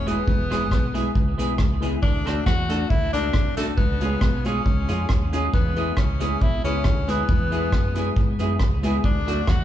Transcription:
Already playing: fingered electric bass D#1
0.06 upright piano G#3 B3 E4 G#4, clean electric guitar G#3 B3 E4 G#4, tenor saxophone B3, closed hi-hat
0.27 fingered electric bass E1, kick
0.50 upright piano G#3 B3 E4 G#4, clean electric guitar G#3 B3 E4 G#4, cross-stick, closed hi-hat
0.71 fingered electric bass B1, kick, cross-stick
0.94 upright piano G#3 B3 E4 G#4, clean electric guitar G#3 B3 E4 G#4, closed hi-hat
1.15 fingered electric bass C#2, muted clean electric guitar stroke, kick
1.38 fingered electric bass B1, upright piano G#3 B3 E4 G#4, clean electric guitar G#3 B3 E4 G#4, closed hi-hat
1.58 fingered electric bass C#2, upright piano E4 G#4, kick, cross-stick
1.81 upright piano G#3 B3 E4 G#4, clean electric guitar G#3 B3 E4 G#4, closed hi-hat
2.03 fingered electric bass D2, tenor saxophone D4, kick
2.25 upright piano A3 D4 F#4 A4, clean electric guitar A3 D4 F#4 A4, cross-stick, closed hi-hat
2.46 fingered electric bass E2, tenor saxophone F#4, kick, cross-stick
2.69 upright piano A3 D4 F#4 A4, clean electric guitar A3 D4 F#4 A4, closed hi-hat
2.89 fingered electric bass D2, tenor saxophone E4, muted clean electric guitar stroke, kick
3.13 fingered electric bass C#2, clean electric guitar A3 D4 F#4 A4, upright piano A3 D4 F#4 A4, tenor saxophone D4, closed hi-hat
3.33 fingered electric bass C2, upright piano F#4 A4, kick, cross-stick
3.56 upright piano A3 D4 F#4 A4, tenor saxophone A3, clean electric guitar A3 D4 F#4 A4, closed hi-hat
3.77 fingered electric bass C#2, tenor saxophone B3, kick
4.00 upright piano G#3 C#4 F4 G#4, clean electric guitar G#3 C#4 F4 G#4, closed hi-hat
4.21 fingered electric bass B1, kick, cross-stick
4.45 upright piano G#3 C#4 F4 G#4, clean electric guitar G#3 C#4 F4 G#4, tenor saxophone C#4, closed hi-hat
4.66 fingered electric bass C#2, muted clean electric guitar stroke, kick
4.88 fingered electric bass F2, clean electric guitar G#3 C#4 F4 G#4, upright piano G#3 C#4 F4 G#4, closed hi-hat
5.09 fingered electric bass D#2, upright piano F4 G#4, kick, cross-stick
5.32 upright piano G#3 C#4 F4 G#4, clean electric guitar G#3 C#4 F4 G#4, closed hi-hat
5.54 fingered electric bass E2, tenor saxophone B3, kick
5.76 upright piano G#3 B3 E4 G#4, clean electric guitar G#3 B3 E4 G#4, closed hi-hat
5.97 fingered electric bass C#2, tenor saxophone C#4, kick, cross-stick
6.19 clean electric guitar G#3 B3 E4 G#4, upright piano G#3 B3 E4 G#4, closed hi-hat
6.41 fingered electric bass B1, tenor saxophone E4, muted clean electric guitar stroke, kick
6.64 fingered electric bass C#2, upright piano G#3 B3 E4 G#4, clean electric guitar G#3 B3 E4 G#4, tenor saxophone C#4, closed hi-hat
6.84 fingered electric bass D2, upright piano E4 G#4, kick, cross-stick
7.07 upright piano G#3 B3 E4 G#4, clean electric guitar G#3 B3 E4 G#4, tenor saxophone B3, closed hi-hat
7.29 fingered electric bass E2, kick
7.51 upright piano G#3 B3 E4 G#4, clean electric guitar G#3 B3 E4 G#4, closed hi-hat
7.72 fingered electric bass F#2, kick, cross-stick
7.95 upright piano G#3 B3 E4 G#4, clean electric guitar G#3 B3 E4 G#4, closed hi-hat
8.16 fingered electric bass G#2, muted clean electric guitar stroke, kick
8.39 fingered electric bass F#2, upright piano G#3 B3 E4 G#4, clean electric guitar G#3 B3 E4 G#4, closed hi-hat
8.60 fingered electric bass C#2, upright piano E4 G#4, kick, cross-stick
8.83 upright piano G#3 B3 E4 G#4, clean electric guitar G#3 B3 E4 G#4, closed hi-hat
9.04 fingered electric bass D2, tenor saxophone D4, kick
9.27 clean electric guitar F#3 A3 D4 F#4, upright piano A3 D4 F#4 A4, closed hi-hat
9.48 fingered electric bass E2, tenor saxophone F#4, kick, cross-stick

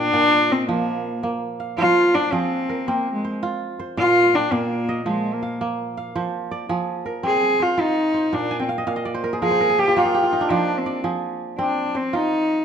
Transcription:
Already playing: kora A#2 C4 F4 C5 F5 G5, cello D4
0.13 kora A#2 D5
0.50 cello C4, kora D#5
0.69 kora F3, cello A#3
1.23 kora A#3
1.60 kora F5
1.78 kora F3 C5, cello F4
2.15 cello D4, kora D5
2.32 kora F3 G#4, cello C4
2.69 kora A#4
2.87 cello A#3, kora C4
3.14 cello G#3
3.25 kora C5
3.43 kora F4
3.79 kora C5
3.97 kora A#2 F5, cello F4
4.34 cello D4, kora G5
4.52 kora A#2 D5, cello A#3
4.89 kora D#5
5.06 kora F3, cello G#3
5.34 cello A#3
5.43 kora F5
5.61 kora A#3
5.97 kora F5
6.16 kora F3 C5
6.51 kora D5
6.69 kora F3 G#4
7.06 kora A#4
7.23 kora C4, cello G#4
7.60 cello F4, kora C5
7.77 cello D#4, kora F4
8.14 kora C5
8.33 kora A#2, cello D4
8.51 kora G#5
8.60 cello C4, kora G5
8.69 kora F5
8.78 kora D#5
8.87 kora A#2 F5
8.96 kora D#5
9.05 kora D5
9.14 kora C5
9.24 kora A#4
9.33 kora G#4
9.42 kora F3 A#4, cello G#4
9.51 kora C5
9.60 kora A#4
9.69 kora G#4
9.79 kora G4, cello G4
9.88 kora F4
9.96 kora A#3 G4, cello F4
10.05 kora G#4
10.14 kora G4
10.23 kora F4
10.33 kora D#4
10.41 kora D4
10.50 kora F3 C5, cello D4
10.78 cello C4
10.86 kora D5
11.04 kora F3 G#4
11.59 kora C4, cello D4
11.95 cello C4, kora C5
12.13 cello D#4, kora F4

